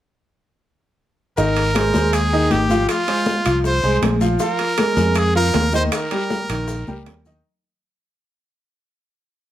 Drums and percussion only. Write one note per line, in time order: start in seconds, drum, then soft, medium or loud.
1.37 high bongo medium
1.37 high conga soft
1.37 long guiro medium
1.37 maracas medium
1.56 high bongo soft
1.56 high conga soft
1.56 high timbale medium
1.56 maracas soft
1.75 high bongo medium
1.75 high conga medium
1.75 high timbale medium
1.75 short guiro medium
1.75 claves medium
1.75 maracas soft
1.94 high conga loud
1.94 short guiro medium
1.94 maracas medium
2.13 high bongo medium
2.13 high conga soft
2.13 high timbale medium
2.13 long guiro medium
2.13 claves medium
2.13 maracas medium
2.32 high bongo soft
2.32 high conga soft
2.32 maracas soft
2.50 high bongo soft
2.50 low bongo medium
2.50 high conga medium
2.50 high timbale medium
2.50 short guiro medium
2.50 maracas soft
2.69 high bongo soft
2.69 high conga medium
2.69 short guiro medium
2.69 maracas medium
2.88 high bongo medium
2.88 high conga soft
2.88 high timbale medium
2.88 long guiro medium
2.88 claves medium
2.88 maracas medium
3.07 high bongo soft
3.07 high conga soft
3.07 high timbale medium
3.07 maracas soft
3.26 high bongo medium
3.26 high conga medium
3.26 short guiro medium
3.26 maracas soft
3.45 high conga soft
3.45 high timbale medium
3.45 short guiro medium
3.45 claves medium
3.45 maracas medium
3.64 high bongo medium
3.64 high conga soft
3.64 long guiro medium
3.64 maracas medium
3.83 high bongo soft
3.83 high conga soft
3.83 maracas soft
4.02 high bongo soft
4.02 low bongo medium
4.02 high conga medium
4.02 high timbale medium
4.02 low timbale medium
4.02 short guiro medium
4.02 claves medium
4.02 maracas soft
4.21 high bongo soft
4.21 high conga medium
4.21 short guiro medium
4.21 maracas medium
4.39 high bongo medium
4.39 high conga soft
4.39 long guiro medium
4.39 maracas medium
4.59 high bongo soft
4.59 high conga soft
4.59 high timbale medium
4.59 maracas soft
4.78 high bongo medium
4.78 high conga medium
4.78 high timbale medium
4.78 short guiro medium
4.78 claves medium
4.78 maracas soft
4.97 high conga loud
4.97 short guiro medium
4.97 maracas medium
5.15 high bongo medium
5.15 high conga soft
5.15 high timbale medium
5.15 long guiro medium
5.15 claves medium
5.15 maracas medium
5.34 high bongo soft
5.34 high conga soft
5.34 maracas soft
5.54 high bongo soft
5.54 low bongo medium
5.54 high conga medium
5.54 high timbale medium
5.54 low timbale medium
5.54 short guiro medium
5.54 maracas soft
5.72 high bongo soft
5.72 high conga medium
5.72 short guiro medium
5.72 maracas medium
5.92 high bongo medium
5.92 high conga soft
5.92 high timbale medium
5.92 long guiro medium
5.92 claves medium
5.92 maracas medium
6.11 high bongo soft
6.11 high conga soft
6.11 high timbale medium
6.11 maracas soft
6.30 high bongo medium
6.30 high conga loud
6.30 short guiro medium
6.30 maracas soft
6.49 high conga soft
6.49 high timbale medium
6.49 short guiro medium
6.49 claves medium
6.49 maracas medium
6.68 high bongo medium
6.68 high conga soft
6.68 long guiro medium
6.68 maracas medium
6.87 high bongo soft
6.87 high conga loud
6.87 maracas soft
7.06 high bongo soft
7.06 low bongo medium
7.06 high conga medium
7.06 high timbale medium
7.06 low timbale medium
7.06 short guiro medium
7.06 claves medium
7.06 maracas soft
7.25 high bongo soft
7.25 low conga medium
7.25 short guiro medium
7.25 maracas medium